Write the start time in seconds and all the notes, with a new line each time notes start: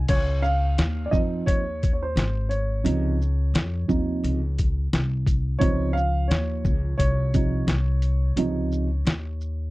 0.08 C#2 C#5, kick, closed hi-hat, crash
0.42 F5, shaker
0.78 D#2, snare, closed hi-hat
1.06 D5
1.11 F2 F3 C4 D#4 D#5, kick, shaker
1.46 D#2 C#5, kick, closed hi-hat
1.83 kick, closed hi-hat, shaker
1.93 C#5
2.03 C5
2.16 G#1, snare, closed hi-hat
2.49 C#5, closed hi-hat, shaker
2.84 C#2 C3 F3 D#4, closed hi-hat
3.22 shaker
3.54 F2, snare, closed hi-hat
3.88 D#2 C3 F3 D#4, kick, shaker
4.24 C#2, closed hi-hat
4.59 kick, closed hi-hat, shaker
4.93 C2, snare, closed hi-hat
5.27 kick, closed hi-hat, shaker
5.59 C#2 C3 F3 D#4 C5 C#5, kick, closed hi-hat
5.93 F5
5.97 shaker
6.28 D#2 C#5, snare, closed hi-hat
6.65 C#2, kick, shaker
6.98 C2 C#5, kick, closed hi-hat
7.34 C3 F3 D#4, kick, closed hi-hat, shaker
7.67 C2, snare, closed hi-hat
8.02 closed hi-hat, shaker
8.36 C#2 C3 F3 D#4, closed hi-hat
8.72 shaker
9.05 D#2, snare, closed hi-hat
9.41 shaker